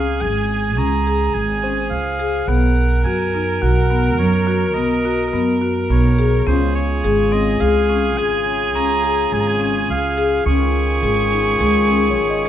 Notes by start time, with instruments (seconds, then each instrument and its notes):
Already playing: upright bass C#2, marimba C#4, viola G#4, oboe F5, tine electric piano A#5
0.20 upright bass G#1, marimba G#4, oboe G#5
0.77 upright bass C#2, marimba C#4, oboe A#5
1.07 marimba G#4
1.34 upright bass G#1, oboe G#5
1.63 marimba C#4, tine electric piano C5
1.90 upright bass C#2, oboe F5
2.19 marimba G#4
2.47 upright bass B1, marimba B3, viola A#4, oboe F#5
3.04 upright bass F#2, marimba F#4, oboe G#5
3.34 marimba D#4
3.62 upright bass B1, marimba F#4, oboe F#5
3.90 marimba B3
4.18 upright bass F#2, oboe C#5
4.47 marimba F#4
4.74 upright bass B1, marimba B3, oboe D#5
5.05 marimba F#4
5.33 upright bass F#2, marimba B3
5.61 marimba F#4
5.89 upright bass B1, marimba B3, oboe C#5
6.18 marimba G#4
6.39 viola A#4
6.46 upright bass C#2, harmonium C#3 C#4 F4, marimba C#4, viola G#4, oboe C5
6.75 oboe C#5
7.04 upright bass G#1, marimba G#4
7.32 marimba C4, oboe D#5
7.60 upright bass C#2, marimba G#4, oboe F5
7.89 marimba C#4
8.17 upright bass G#1, marimba G#4, oboe G#5
8.45 harmonium C#4
8.75 upright bass C#2, marimba C#4, oboe A#5
9.04 marimba G#4
9.32 upright bass G#1, oboe G#5
9.40 oboe A#5
9.48 oboe G#5
9.60 marimba C#4
9.89 upright bass C#2, oboe F5
10.18 marimba G#4
10.46 upright bass C#2, harmonium D#3 C#4 F4, marimba C#4, viola G#4, oboe C#6
11.03 upright bass G#1, marimba G#4
11.32 marimba D#4
11.60 upright bass C#2, marimba G#4
11.89 marimba C#4, tine electric piano G#4
12.11 tine electric piano C#5
12.17 upright bass G#1
12.30 tine electric piano D#5
12.45 marimba G#4